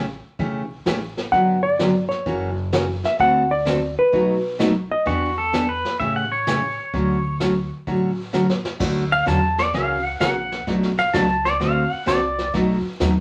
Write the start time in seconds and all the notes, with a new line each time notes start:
Already playing: A1
0.39 B1 C#3 E3 A3 C#4 G4, brush sweep, kick
0.86 A1 C#3 E3 A3 C#4 G4, snare, hi-hat pedal
1.17 snare
1.32 G1 D3 F#3 B3 D4 G4 F#5, brush sweep, kick
1.63 D5
1.79 D3 F#3 B3 D4 G4, snare, hi-hat pedal
2.09 C#5, snare
2.26 F#1 C#3 E3 A#3 C#4 F#4, brush sweep, kick
2.73 C#3 E3 A#3 C#4 F#4, snare, hi-hat pedal
3.04 E5, snare
3.19 D2 D3 A3 C4 F#4 A4 F#5, brush sweep, kick
3.51 D5
3.65 D3 A3 C4 F#4 A4, snare, hi-hat pedal
3.99 B4
4.12 B1 B2 F#3 A3 D#4 F#4, brush sweep, kick
4.59 B2 F#3 A3 D#4 F#4, snare, hi-hat pedal
4.91 D#5
5.06 E2 E3 B3 D4 F#4 G4, brush sweep, kick
5.38 A4
5.53 E3 B3 D4 G4, snare, hi-hat pedal
5.69 B4
5.85 snare
6.00 A1 C#3 E3 A3 C#4 G4 E5, brush sweep, kick
6.16 F#5
6.32 C#5
6.47 C#3 E3 A3 C#4 G4, snare, hi-hat pedal
6.94 D2 D3 F#3 A3 C#4 F#4, brush sweep, kick
7.40 D3 F#3 A3 C#4 F#4, snare, hi-hat pedal
7.87 A1 D3 F#3 A3 C#4 F#4, brush sweep, kick
8.33 D3 F#3 A3 C#4 F#4, snare, hi-hat pedal
8.49 snare
8.65 snare
8.80 D2 D3 F#3 A3 C#4 F#4, brush sweep, kick, snare, crash
9.12 F5
9.26 E2 D3 F#3 A3 C#4 F#4 A5, kick, snare, hi-hat pedal
9.58 D5, snare
9.74 C#2 C#3 E3 A#3 C#4 F#4 F5, brush sweep, kick, snare
10.06 F#5
10.20 A#1 C#3 E3 A#3 C#4 F#4 F#5, kick, snare, hi-hat pedal
10.52 snare
10.67 B1 B2 F#3 A3 D4 F#4, brush sweep, kick, snare
10.83 snare
10.98 F5, snare
11.13 C#2 B2 F#3 A3 D4 F#4 A5, kick, snare, hi-hat pedal
11.45 D5, snare
11.60 D2 D3 A3 C4 F#4 A4 F5, brush sweep, kick, snare
11.92 F#5, muted upright bass stroke
12.06 C2 D3 A3 C4 F#4 A4 D5, kick, snare, hi-hat pedal
12.39 snare
12.54 B1 B2 F#3 A3 D#4 F#4, brush sweep, kick, snare
12.85 muted upright bass stroke
13.00 D#2 B2 F#3 A3 D#4 F#4, kick, snare, hi-hat pedal